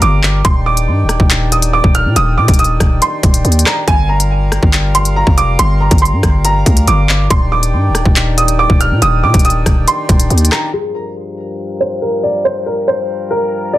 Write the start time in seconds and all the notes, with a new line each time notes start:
Already playing: G3 F4 A#4
0.02 G1 D6, closed hi-hat
0.23 clap
0.45 D#1 D#3 D4 G4 C6, kick, closed hi-hat
0.66 D6
0.77 closed hi-hat
0.88 G2
1.04 D#1
1.09 cross-stick, closed hi-hat
1.20 D#1, kick
1.30 clap, closed hi-hat
1.52 D#6, closed hi-hat
1.62 closed hi-hat
1.73 D6
1.84 D#1, kick
1.95 F6, closed hi-hat
2.05 A#2
2.16 D#1 D#6, closed hi-hat
2.38 A#2 D6
2.48 D#1, kick, closed hi-hat
2.54 closed hi-hat
2.59 D#6, closed hi-hat
2.64 closed hi-hat
2.80 D#1, kick, cross-stick, closed hi-hat
3.02 C6, closed hi-hat
3.23 D#1, kick, closed hi-hat
3.34 closed hi-hat
3.45 D#2, closed hi-hat
3.52 closed hi-hat
3.59 closed hi-hat
3.66 A#5, cross-stick, clap
3.88 G1 G3 F4 A#4 G#5, kick, closed hi-hat
4.09 A#5
4.20 closed hi-hat
4.52 cross-stick, closed hi-hat
4.63 G1, kick
4.73 clap, closed hi-hat
4.95 C6, closed hi-hat
5.05 closed hi-hat
5.16 A#5
5.27 F1, kick
5.38 D6, closed hi-hat
5.59 G1 C6, closed hi-hat
5.80 A#5
5.91 G1, kick, closed hi-hat
5.98 C6, closed hi-hat
6.05 closed hi-hat
6.13 G2
6.23 G1, kick, cross-stick, closed hi-hat
6.45 A#5, closed hi-hat
6.66 D2, kick, closed hi-hat
6.77 closed hi-hat
6.88 G1 D6, closed hi-hat
7.09 clap
7.30 D#1 D#3 D4 G4 C6, kick, closed hi-hat
7.52 D6
7.63 closed hi-hat
7.73 G2
7.89 D#1
7.95 cross-stick, closed hi-hat
8.05 D#1, kick
8.16 clap, closed hi-hat
8.38 D#6, closed hi-hat
8.48 closed hi-hat
8.59 D6
8.70 D#1, kick
8.81 F6, closed hi-hat
8.91 A#2
9.02 D#1 D#6, closed hi-hat
9.23 A#2 D6
9.34 D#1, kick, closed hi-hat
9.39 closed hi-hat
9.45 D#6, closed hi-hat
9.50 closed hi-hat
9.66 D#1, kick, cross-stick, closed hi-hat
9.88 C6, closed hi-hat
10.09 D#1, kick, closed hi-hat
10.20 closed hi-hat
10.30 D#2, closed hi-hat
10.38 closed hi-hat
10.45 closed hi-hat
10.52 A#5, cross-stick, clap
10.73 G2 F3 G#4
10.95 A#4
11.80 C5
12.02 A#4
12.23 D5
12.45 C5
12.66 A#4
12.88 C5
13.31 A#4
13.73 D5